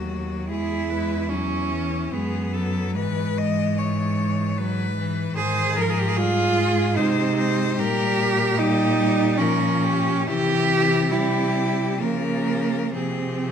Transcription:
0.00 0.52 D#2 soft
0.00 0.52 F#3 soft
0.00 0.47 F#4 medium
0.49 2.13 E2 soft
0.49 0.90 G#3 soft
0.49 1.31 E4 medium
0.49 0.92 G#4 medium
0.90 1.33 G#3 medium
0.90 1.30 B4 medium
1.30 1.74 F#3 medium
1.30 2.14 C#4 medium
1.30 2.15 E4 soft
1.72 2.13 E3 medium
2.13 2.97 F#2 medium
2.13 2.54 G#3 medium
2.13 2.94 B3 medium
2.13 2.56 G#4 medium
2.54 2.97 F#3 medium
2.54 2.95 A4 medium
2.94 5.36 G#2 medium
2.94 3.37 E3 medium
2.94 4.92 G#3 medium
2.94 3.40 B4 medium
3.38 4.56 E3 medium
3.38 3.80 D#5 medium
3.78 4.60 C#5 medium
4.58 4.96 F#3 medium
4.58 5.36 B4 medium
4.98 5.37 E3 medium
5.36 6.98 G#2 medium
5.36 5.79 D#3 medium
5.36 5.82 G#4 loud
5.36 5.77 C5 medium
5.76 6.19 F3 medium
5.76 6.19 A#4 medium
5.81 5.91 A#4 medium
5.90 6.01 G#4 medium
5.99 6.10 G4 medium
6.08 6.18 G#4 medium
6.17 6.58 G3 medium
6.17 6.97 F4 loud
6.17 6.98 G#4 medium
6.57 6.96 G#3 medium
6.96 7.80 C3 medium
6.96 7.81 G#3 medium
6.96 7.76 D#4 medium
6.96 7.37 C5 medium
7.38 7.81 C5 medium
7.77 10.28 A#2 medium
7.77 8.59 G3 medium
7.77 8.60 G4 loud
7.77 8.61 A#4 medium
8.58 8.98 G3 medium
8.58 9.39 D#4 loud
8.58 9.42 G4 medium
8.99 9.41 G3 medium
9.38 10.27 F3 medium
9.38 10.29 C#4 loud
9.38 9.85 A#4 medium
9.84 10.27 G4 medium
10.27 12.02 C3 medium
10.27 11.10 E3 medium
10.27 11.13 E4 medium
10.27 11.13 G4 loud
11.11 12.02 G3 medium
11.11 11.99 E4 medium
11.11 12.03 G4 medium
12.00 12.97 C#3 medium
12.00 12.95 F3 medium
12.00 12.93 A#3 medium
12.00 12.95 A#4 medium
12.95 13.52 C3 medium
12.95 13.52 F3 medium
12.95 13.52 C4 medium
12.95 13.52 G#4 medium

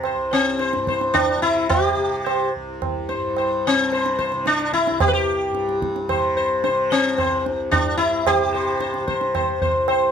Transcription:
0.00 0.14 C2 medium
0.00 0.75 G2 medium
0.00 1.37 C3 medium
0.00 tabla na medium
0.05 0.31 C5 soft
0.15 2.55 C2 medium
0.32 1.18 C4 medium
0.32 tabla na soft
0.59 0.86 C5 soft
0.59 tabla te medium
0.73 3.14 G2 medium
0.73 tabla te medium
0.87 1.14 C5 soft
0.87 tabla ke medium
1.01 tabla te medium
1.14 1.42 D4 medium
1.14 tabla na medium
1.14 tabla ge medium
1.37 1.96 C3 medium
1.42 1.69 E4 medium
1.42 tabla te medium
1.69 2.49 G4 medium
1.69 tabla na medium
1.69 tabla ge medium
1.96 3.74 C3 medium
2.26 2.52 C5 soft
2.26 tabla na medium
2.55 4.90 C2 medium
2.82 tabla na medium
2.82 tabla ge medium
3.09 3.35 C5 soft
3.09 tabla te medium
3.15 5.49 G2 medium
3.37 3.63 C5 soft
3.37 tabla na medium
3.67 4.50 C4 medium
3.74 4.33 C3 medium
3.92 4.17 C5 soft
3.92 tabla te medium
4.06 tabla te medium
4.19 4.44 C5 soft
4.19 tabla ke medium
4.32 6.07 C3 medium
4.32 tabla te medium
4.46 4.73 D4 medium
4.46 tabla te medium
4.60 tabla te medium
4.73 5.01 E4 medium
4.73 tabla ke medium
4.87 7.23 C2 medium
4.87 tabla te medium
5.00 5.07 G4 medium
5.00 tabla na medium
5.00 tabla ge medium
5.08 5.13 B4 medium
5.13 5.78 G4 medium
5.50 7.81 G2 medium
5.55 tabla te medium
5.69 tabla te medium
5.82 tabla ke medium
5.96 tabla te medium
6.07 6.66 C3 medium
6.07 6.35 C5 soft
6.07 tabla na medium
6.07 tabla ge medium
6.37 6.62 C5 soft
6.64 8.40 C3 medium
6.64 6.89 C5 soft
6.64 tabla te medium
6.91 7.75 C4 medium
6.91 tabla te medium
7.18 7.43 C5 soft
7.18 tabla na medium
7.18 tabla ge medium
7.23 9.58 C2 medium
7.46 tabla te medium
7.71 7.97 D4 medium
7.71 tabla na medium
7.71 tabla ge medium
7.81 10.12 G2 medium
7.97 8.27 E4 medium
7.97 tabla te medium
8.27 9.04 G4 medium
8.27 tabla na medium
8.27 tabla ge medium
8.40 8.98 C3 medium
8.55 8.79 C5 soft
8.80 9.06 C5 soft
8.80 tabla te medium
8.94 10.12 C3 medium
8.94 tabla te medium
9.07 9.33 C5 soft
9.07 tabla ke medium
9.21 tabla te medium
9.35 9.60 C5 soft
9.35 tabla na medium
9.35 tabla ge medium
9.58 10.12 C2 medium
9.58 9.87 C5 soft
9.58 tabla ge medium
9.88 10.12 C5 soft
9.88 tabla na medium

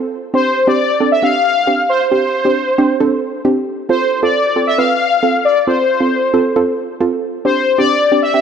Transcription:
0.00 0.14 C4 medium
0.00 0.14 F4 medium
0.00 0.14 A4 loud
0.34 0.52 C4 medium
0.34 0.52 D4 medium
0.34 0.52 G4 medium
0.34 0.68 C5 loud
0.67 0.86 C4 medium
0.67 0.86 D4 medium
0.67 0.85 G4 medium
0.67 1.09 D5 loud
1.00 1.13 C4 medium
1.00 1.13 D4 medium
1.00 1.13 A4 medium
1.12 1.23 E5 loud
1.22 1.47 C4 medium
1.22 1.47 D4 medium
1.22 1.47 G4 medium
1.22 1.91 F5 loud
1.67 1.91 C4 medium
1.67 1.92 D4 medium
1.67 1.92 G4 medium
1.89 2.10 C5 medium
2.11 2.30 C4 medium
2.11 2.30 D4 medium
2.11 2.30 G4 medium
2.11 3.41 C5 loud
2.45 2.63 C4 medium
2.45 2.63 D4 medium
2.45 2.63 G4 medium
2.78 2.90 C4 medium
2.78 2.90 D4 medium
2.78 2.90 G4 loud
3.00 3.25 C4 medium
3.00 3.25 D4 medium
3.00 3.25 A4 loud
3.45 3.69 C4 medium
3.45 3.69 D4 medium
3.45 3.69 G4 loud
3.89 4.08 C4 medium
3.89 4.08 F4 medium
3.89 4.08 A4 medium
3.89 4.20 C5 loud
4.23 4.41 C4 medium
4.23 4.41 F4 medium
4.23 4.41 A4 medium
4.23 4.69 D5 loud
4.56 4.68 C4 medium
4.56 4.68 F4 medium
4.56 4.68 A4 medium
4.67 4.79 E5 loud
4.78 5.03 C4 medium
4.78 5.03 F4 medium
4.78 5.03 B4 medium
4.78 5.47 F5 loud
5.23 5.47 C4 medium
5.23 5.47 F4 medium
5.23 5.47 A4 medium
5.45 5.68 D5 loud
5.67 5.85 C4 medium
5.67 5.86 F4 medium
5.67 5.85 A4 medium
5.67 6.96 C5 loud
6.00 6.19 C4 medium
6.00 6.19 F4 medium
6.00 6.19 A4 medium
6.34 6.46 C4 medium
6.34 6.46 F4 medium
6.34 6.46 A4 loud
6.56 6.80 C4 medium
6.56 6.80 F4 medium
6.56 6.80 A4 loud
7.00 7.25 C4 medium
7.00 7.25 F4 medium
7.00 7.25 A4 loud
7.45 7.63 C4 medium
7.45 7.63 D4 medium
7.45 7.63 G4 medium
7.45 7.79 C5 loud
7.78 7.97 C4 medium
7.78 7.97 D4 medium
7.78 7.97 G4 medium
7.78 8.19 D5 loud
8.12 8.24 C4 medium
8.12 8.24 D4 medium
8.12 8.24 G4 medium
8.22 8.41 E5 loud
8.34 8.41 C4 medium
8.34 8.41 D4 medium
8.34 8.41 G4 medium

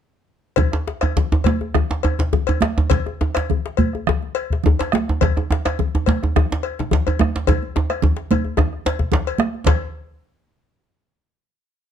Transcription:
0.56 bombo low medium
0.56 cowbell medium
0.56 djembe slap soft
0.56 djembe tone medium
0.56 djembe bass medium
0.56 low conga medium
0.72 bombo rim soft
0.72 djembe slap medium
0.72 djembe tone medium
0.87 djembe slap medium
1.01 bombo rim medium
1.01 cowbell medium
1.01 djembe tone medium
1.01 high conga soft
1.17 djembe slap soft
1.17 djembe slap medium
1.17 djembe bass medium
1.17 low conga medium
1.32 djembe slap medium
1.32 djembe tone medium
1.44 bombo low medium
1.44 cowbell soft
1.44 djembe slap medium
1.44 djembe slap soft
1.44 high conga medium
1.61 djembe tone medium
1.74 bombo rim medium
1.74 djembe slap medium
1.74 djembe tone medium
1.74 low conga medium
1.74 djembe bass medium
1.90 djembe slap medium
1.90 high conga soft
2.03 bombo rim soft
2.03 cowbell soft
2.03 djembe tone medium
2.19 bombo low medium
2.19 djembe slap medium
2.33 bombo rim soft
2.33 djembe slap soft
2.33 djembe tone medium
2.33 djembe bass medium
2.33 low conga medium
2.47 cowbell medium
2.47 djembe tone medium
2.47 high conga soft
2.61 bombo rim medium
2.61 djembe slap medium
2.61 high conga medium
2.77 bombo rim soft
2.77 djembe tone loud
2.90 bombo low medium
2.90 cowbell medium
2.90 djembe slap medium
2.90 djembe slap soft
2.90 low conga medium
2.90 djembe bass medium
3.06 bombo rim soft
3.06 djembe tone medium
3.21 djembe slap medium
3.21 djembe tone medium
3.35 bombo rim medium
3.35 cowbell medium
3.35 djembe slap medium
3.35 high conga soft
3.50 djembe slap soft
3.50 low conga medium
3.50 djembe bass medium
3.66 djembe slap medium
3.77 bombo low medium
3.77 cowbell soft
3.77 djembe slap soft
3.77 high conga medium
3.93 bombo rim soft
3.93 djembe tone medium
4.07 bombo rim medium
4.07 djembe slap medium
4.07 low conga medium
4.07 djembe bass medium
4.23 high conga soft
4.35 bombo rim soft
4.35 cowbell medium
4.50 bombo low medium
4.50 djembe slap medium
4.63 bombo rim soft
4.63 djembe slap soft
4.63 djembe tone loud
4.63 djembe tone medium
4.63 low conga medium
4.63 djembe bass medium
4.79 cowbell soft
4.79 djembe slap medium
4.79 high conga soft
4.92 bombo rim medium
4.92 djembe slap medium
4.92 high conga medium
5.08 bombo rim soft
5.08 djembe tone medium
5.21 bombo low medium
5.21 cowbell medium
5.21 djembe slap medium
5.21 djembe slap soft
5.21 low conga medium
5.21 djembe bass medium
5.37 bombo rim soft
5.37 djembe tone medium
5.51 djembe slap medium
5.51 djembe tone medium
5.65 bombo rim medium
5.65 cowbell soft
5.65 djembe slap medium
5.65 high conga soft
5.79 djembe slap soft
5.79 low conga medium
5.79 djembe bass medium
5.95 djembe slap medium
5.95 djembe tone medium
6.06 bombo low medium
6.06 cowbell soft
6.06 djembe slap soft
6.06 djembe slap medium
6.06 high conga medium
6.23 bombo rim soft
6.23 djembe tone medium
6.36 bombo rim medium
6.36 djembe slap medium
6.36 djembe tone medium
6.36 low conga medium
6.36 djembe bass medium
6.51 djembe slap medium
6.51 high conga soft
6.63 bombo rim soft
6.63 cowbell soft
6.79 bombo low medium
6.79 djembe slap medium
6.79 djembe tone medium
6.91 djembe slap soft
6.91 djembe tone medium
6.91 low conga medium
6.91 djembe bass medium
6.93 bombo rim soft
6.93 djembe slap medium
7.06 cowbell soft
7.06 high conga soft
7.06 djembe tone medium
7.19 bombo rim medium
7.19 djembe slap medium
7.19 high conga medium
7.19 djembe tone medium
7.35 bombo rim soft
7.35 djembe slap medium
7.47 bombo rim soft
7.47 bombo low medium
7.47 cowbell medium
7.47 djembe tone loud
7.47 djembe bass medium
7.47 low conga medium
7.62 high conga soft
7.76 djembe slap medium
7.76 djembe tone loud
7.90 bombo rim medium
7.90 cowbell soft
7.90 djembe slap soft
7.90 high conga soft
8.02 djembe slap soft
8.02 djembe tone loud
8.02 low conga medium
8.02 djembe bass medium
8.16 djembe slap medium
8.31 bombo low medium
8.31 cowbell soft
8.31 high conga medium
8.31 djembe tone medium
8.45 djembe tone medium
8.57 bombo rim medium
8.57 djembe slap medium
8.57 djembe tone medium
8.57 djembe bass medium
8.57 low conga medium
8.73 bombo rim soft
8.85 bombo rim soft
8.85 cowbell soft
8.85 djembe slap medium
8.85 high conga soft
8.99 bombo low medium
8.99 djembe slap soft
9.12 bombo rim soft
9.12 djembe slap soft
9.12 djembe slap loud
9.12 high conga soft
9.12 djembe tone medium
9.12 low conga medium
9.12 djembe bass medium
9.27 cowbell soft
9.38 bombo rim medium
9.38 djembe slap medium
9.38 high conga medium
9.55 djembe slap soft
9.66 bombo low medium
9.66 cowbell medium
9.66 djembe slap loud
9.66 low conga medium
9.66 djembe bass medium

